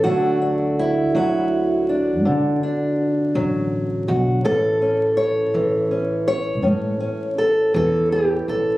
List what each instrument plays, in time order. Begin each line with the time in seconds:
0.04 upright bass D2, steel-string acoustic guitar D3 F#3 A3 D4 F#4
0.42 steel-string acoustic guitar D4
0.79 steel-string acoustic guitar E4
1.15 upright bass D2, steel-string acoustic guitar F#3 F#4
1.89 steel-string acoustic guitar D4
2.25 steel-string acoustic guitar D3, upright bass D3
2.63 steel-string acoustic guitar D4
3.35 upright bass A1, steel-string acoustic guitar F#3
4.08 upright bass B1, steel-string acoustic guitar F#4
4.44 upright bass A1, steel-string acoustic guitar A2 E3 C#4 A4
4.82 steel-string acoustic guitar C#4
5.17 steel-string acoustic guitar C#5
5.54 upright bass A1, steel-string acoustic guitar E3
5.91 steel-string acoustic guitar C#4
6.28 steel-string acoustic guitar C#5
6.63 steel-string acoustic guitar A2 C#4, upright bass A2
7.00 steel-string acoustic guitar C#4
7.38 steel-string acoustic guitar A4
7.74 upright bass E2, steel-string acoustic guitar E3 A4
8.12 steel-string acoustic guitar G4
8.48 upright bass A1, steel-string acoustic guitar A4